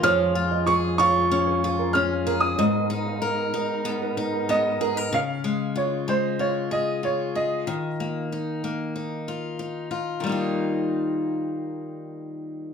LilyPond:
<<
  \new Staff \with { instrumentName = "Upright piano" } { \time 4/4 \key ees \mixolydian \tempo 4 = 94 f'''4 des'''8 des'''4. f'''8. ees'''16~ | ees'''2. ees''4 | f''4 des''8 c''8 des''8 ees''8 des''8 ees''8~ | ees''2. r4 |
r1 | }
  \new Staff \with { instrumentName = "Nylon-string guitar" } { \time 4/4 \key ees \mixolydian des''8 r16 ees''8 r16 des''16 r8 c''16 r16 bes'16 aes'16 r16 bes'16 r16 | ees''8 r16 f''8 r16 ees''16 r8 ces''16 r16 bes'16 aes'16 r16 bes'16 r16 | r1 | r1 |
r1 | }
  \new Staff \with { instrumentName = "Steel-string acoustic guitar" } { \time 4/4 \key ees \mixolydian f8 f'8 aes'8 f'8 des'8 f'8 des'8 aes'8 | aes,8 ees'8 bes'8 ees'8 ces'8 ees'8 ces'8 aes'16 bes'16 | des8 aes8 f'8 aes8 f'8 aes'8 f'8 aes'8 | ees8 bes8 ees'8 bes8 ees'8 f'8 ees'8 f'8 |
<ees g bes ees' f'>1 | }
  \new Staff \with { instrumentName = "Tonewheel organ" } { \time 4/4 \key ees \mixolydian <f, f aes des' aes'>1 | <aes, ces' ees' bes'>1 | r1 | r1 |
r1 | }
>>